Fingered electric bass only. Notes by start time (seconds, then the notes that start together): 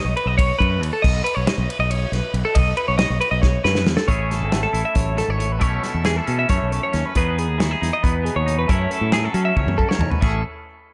0.05 B1
0.26 B1
0.60 F#2
0.81 D#2
1.04 B1
1.37 B1
1.58 B1
1.79 B1
2.12 B1
2.34 B1
2.56 B1
2.88 B1
3.10 B1
3.31 B1
3.65 F#2
3.86 E2
4.08 A1
4.40 G#1
4.74 A1
4.96 A1
5.28 G#1
5.51 A1
5.61 B1
5.94 E2
6.28 B2
6.49 F#2
6.62 B1
6.94 D#2
7.15 E2
7.49 D#2
7.82 E2
8.04 E2
8.36 D#2
8.59 E2
8.70 F#2
9.01 A2
9.34 F#3
9.57 C#2
9.66 F#2
9.99 E2
10.22 A1